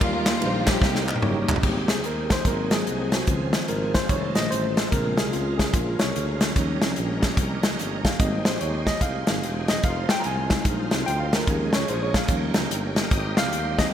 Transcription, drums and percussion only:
0.01 kick loud
0.01 ride medium
0.26 snare loud
0.26 clap loud
0.26 ride medium
0.42 ride medium
0.67 kick medium
0.67 snare loud
0.67 clap loud
0.67 ride medium
0.82 kick loud
0.82 snare medium
0.95 snare medium
1.08 clap loud
1.16 high tom medium
1.22 mid tom loud
1.49 clap loud
1.49 floor tom loud
1.56 floor tom loud
1.63 kick loud
1.63 crash medium
1.88 snare loud
1.88 closed hi-hat medium
2.04 closed hi-hat medium
2.30 kick medium
2.30 snare medium
2.30 closed hi-hat medium
2.45 kick loud
2.45 closed hi-hat medium
2.71 snare loud
2.71 closed hi-hat medium
2.87 closed hi-hat medium
3.12 snare loud
3.12 closed hi-hat medium
3.27 kick loud
3.27 closed hi-hat medium
3.53 snare loud
3.53 closed hi-hat medium
3.68 closed hi-hat medium
3.94 kick medium
3.94 snare medium
3.94 closed hi-hat medium
4.09 kick loud
4.09 closed hi-hat medium
4.35 snare loud
4.35 closed hi-hat medium
4.52 closed hi-hat medium
4.77 snare loud
4.77 closed hi-hat medium
4.92 kick loud
4.92 closed hi-hat medium
5.17 snare loud
5.17 closed hi-hat medium
5.33 closed hi-hat medium
5.59 kick medium
5.59 snare loud
5.59 closed hi-hat medium
5.73 kick loud
5.73 closed hi-hat loud
5.99 snare loud
5.99 closed hi-hat medium
6.16 closed hi-hat medium
6.41 snare loud
6.41 closed hi-hat medium
6.56 kick loud
6.56 closed hi-hat medium
6.82 snare loud
6.82 closed hi-hat medium
6.96 closed hi-hat medium
7.22 kick medium
7.22 snare medium
7.22 closed hi-hat medium
7.37 kick loud
7.37 closed hi-hat loud
7.63 snare loud
7.63 closed hi-hat medium
7.79 closed hi-hat medium
8.05 kick medium
8.05 snare loud
8.05 closed hi-hat medium
8.20 kick loud
8.20 closed hi-hat medium
8.45 snare loud
8.45 closed hi-hat medium
8.61 closed hi-hat medium
8.87 kick medium
8.87 snare loud
8.87 closed hi-hat medium
9.01 kick loud
9.01 closed hi-hat loud
9.27 snare loud
9.27 closed hi-hat medium
9.43 closed hi-hat medium
9.68 snare loud
9.68 closed hi-hat medium
9.83 kick loud
9.83 closed hi-hat medium
10.09 snare loud
10.09 closed hi-hat medium
10.24 closed hi-hat medium
10.50 kick medium
10.50 snare loud
10.50 closed hi-hat medium
10.65 kick loud
10.65 closed hi-hat loud
10.91 snare loud
10.91 closed hi-hat medium
11.08 closed hi-hat medium
11.33 snare loud
11.33 closed hi-hat medium
11.47 kick loud
11.47 closed hi-hat medium
11.73 snare loud
11.73 closed hi-hat medium
11.88 closed hi-hat medium
12.14 kick medium
12.14 snare loud
12.14 closed hi-hat medium
12.28 kick loud
12.28 closed hi-hat medium
12.54 snare loud
12.54 closed hi-hat medium
12.71 closed hi-hat medium
12.96 snare loud
12.96 closed hi-hat medium
13.11 kick loud
13.11 closed hi-hat medium
13.37 snare loud
13.37 closed hi-hat medium
13.53 closed hi-hat medium
13.78 kick medium
13.78 snare loud
13.78 closed hi-hat medium

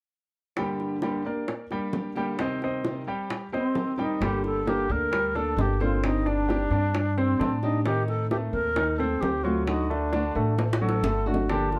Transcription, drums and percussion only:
0.57 high bongo medium
0.80 high bongo soft
1.02 high bongo soft
1.48 high bongo medium
1.71 high bongo soft
1.93 high bongo soft
1.93 low bongo medium
2.16 high bongo soft
2.39 high bongo medium
2.62 high bongo soft
2.85 high bongo medium
3.30 high bongo medium
3.54 high bongo soft
3.75 high bongo soft
3.75 low bongo medium
3.99 high bongo soft
4.22 high bongo medium
4.44 high bongo soft
4.67 high bongo medium
5.13 high bongo medium
5.36 high bongo soft
5.59 high bongo soft
5.59 low bongo medium
5.81 high bongo soft
6.04 high bongo medium
6.27 high bongo soft
6.50 high bongo medium
6.95 high bongo medium
7.18 high bongo soft
7.41 high bongo soft
7.41 low bongo medium
7.63 high bongo soft
7.86 high bongo medium
8.08 high bongo soft
8.31 high bongo medium
8.76 high bongo medium
9.00 high bongo soft
9.23 high bongo soft
9.23 low bongo medium
9.45 high bongo soft
9.68 high bongo medium
9.91 high bongo soft
10.13 high bongo medium
10.59 high bongo medium
10.73 high bongo medium
10.89 high bongo medium
11.04 low bongo loud
11.34 low bongo medium
11.50 high bongo medium
11.72 high bongo soft

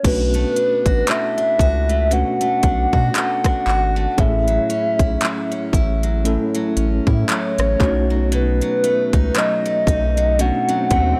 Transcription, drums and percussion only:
0.04 kick loud
0.04 closed hi-hat medium
0.04 crash medium
0.34 closed hi-hat soft
0.56 closed hi-hat medium
0.86 kick medium
0.86 closed hi-hat soft
1.07 clap loud
1.07 closed hi-hat medium
1.38 closed hi-hat soft
1.59 kick medium
1.59 closed hi-hat medium
1.89 closed hi-hat soft
2.11 closed hi-hat medium
2.41 closed hi-hat medium
2.63 kick medium
2.63 closed hi-hat medium
2.93 kick medium
3.15 clap loud
3.15 closed hi-hat medium
3.44 kick loud
3.44 cross-stick loud
3.44 closed hi-hat soft
3.68 clap medium
4.18 kick loud
4.18 closed hi-hat medium
4.48 closed hi-hat soft
4.70 closed hi-hat medium
4.99 kick medium
4.99 closed hi-hat soft
5.21 clap loud
5.21 closed hi-hat medium
5.52 closed hi-hat soft
5.73 kick medium
5.73 closed hi-hat medium
6.03 closed hi-hat soft
6.25 closed hi-hat medium
6.55 closed hi-hat medium
6.77 closed hi-hat medium
7.07 kick medium
7.29 clap loud
7.29 closed hi-hat medium
7.58 cross-stick loud
7.58 closed hi-hat medium
7.80 kick loud
7.80 clap medium
8.32 closed hi-hat medium
8.61 closed hi-hat soft
8.84 closed hi-hat medium
9.13 kick medium
9.13 closed hi-hat soft
9.35 clap loud
9.35 closed hi-hat medium
9.66 closed hi-hat soft
9.87 kick medium
9.87 closed hi-hat medium
10.17 closed hi-hat soft
10.39 closed hi-hat medium
10.69 closed hi-hat medium
10.91 kick medium
10.91 closed hi-hat medium

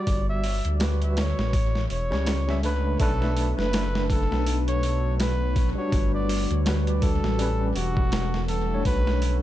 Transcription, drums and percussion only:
0.07 kick loud
0.07 open hi-hat medium
0.44 open hi-hat medium
0.65 closed hi-hat soft
0.80 snare loud
0.80 open hi-hat medium
1.02 closed hi-hat soft
1.17 snare loud
1.17 open hi-hat medium
1.39 snare medium
1.53 kick loud
1.53 open hi-hat medium
1.75 snare soft
1.90 open hi-hat medium
2.12 snare soft
2.26 snare loud
2.26 open hi-hat medium
2.49 snare soft
2.63 open hi-hat medium
3.00 kick loud
3.00 open hi-hat medium
3.22 snare soft
3.37 open hi-hat medium
3.59 snare soft
3.73 snare loud
3.73 open hi-hat medium
3.95 snare medium
4.10 kick loud
4.10 open hi-hat medium
4.32 snare soft
4.47 open hi-hat medium
4.68 closed hi-hat soft
4.83 open hi-hat medium
5.20 snare loud
5.20 open hi-hat medium
5.56 kick medium
5.56 open hi-hat medium
5.92 kick loud
5.92 open hi-hat medium
6.29 open hi-hat medium
6.51 closed hi-hat soft
6.66 snare loud
6.66 open hi-hat medium
6.87 closed hi-hat soft
7.02 kick loud
7.02 open hi-hat medium
7.24 snare medium
7.39 open hi-hat medium
7.76 open hi-hat medium
7.97 kick loud
8.12 snare loud
8.12 open hi-hat medium
8.34 snare soft
8.48 open hi-hat medium
8.85 kick loud
8.85 open hi-hat medium
9.07 snare soft
9.22 open hi-hat medium

